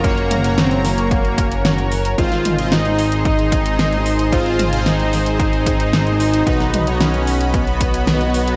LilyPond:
<<
  \new Staff \with { instrumentName = "Analog synth pad" } { \time 4/4 \key aes \mixolydian \tempo 4 = 112 << { <ges bes' bes''>1 | <aes' c'' c'''>1~ | <aes' c'' c'''>1 | <ges' ces'' ces'''>1 | } \\ { des''1 | ees''1~ | ees''1~ | ees''1 | } >> }
  \new Staff \with { instrumentName = "Analog polysynth" } { \time 4/4 \key aes \mixolydian <des' ges' bes' des''>8. <des' ges' bes' des''>2.~ <des' ges' bes' des''>16 | <c' ees' aes' c''>8. <c' ees' aes' ees''>2.~ <c' ees' aes' ees''>16 | <c' ees' aes' c''>8. <c' ees' aes' c''>2.~ <c' ees' aes' c''>16 | <ces' ees' ges' ces''>8. <ces' ees' ges' des''>2.~ <ces' ees' ges' des''>16 | }
  \new Staff \with { instrumentName = "Supersaw synth" } { \time 4/4 \key aes \mixolydian bes4 c'8 bes2 r8 | f'4 ees'4 ees'2 | f'4 ees'4 ees'4. ees'8~ | ees'4 des'4 ces'2 | }
  \new Staff \with { instrumentName = "Analog synth bass" } { \clef bass \time 4/4 \key aes \mixolydian ges,,1 | aes,,1~ | aes,,1 | ces,1 | }
  \new DrumStaff \with { instrumentName = "Drums" } \drummode { \time 4/4 <hh bd>16 hh16 <hh toml>16 hh16 <hh sn>16 hh16 <hho sn>16 hh16 <hh bd>16 hh16 <hh bd>16 hh16 <hh sn>16 hh16 hho16 hh16 | <hh bd>16 <hh sn>16 <hh toml>16 hh16 <hh sn>16 hh16 hho16 hh16 <hh bd>16 hh16 <hh bd>16 hh16 <hh sn>16 hh16 hho16 hh16 | <hh bd>16 hh16 <hh toml>16 hh16 <hh sn>16 hh16 <hho sn>16 hh16 <hh bd>16 hh16 <hh bd>16 hh16 <hh sn>16 hh16 hho16 hh16 | <hh bd>16 <hh sn>16 <hh toml>16 hh16 <hh sn>16 hh16 hho16 hh16 <hh bd>16 hh16 <hh bd>16 hh16 <hh sn>16 hh16 hho16 hh16 | }
>>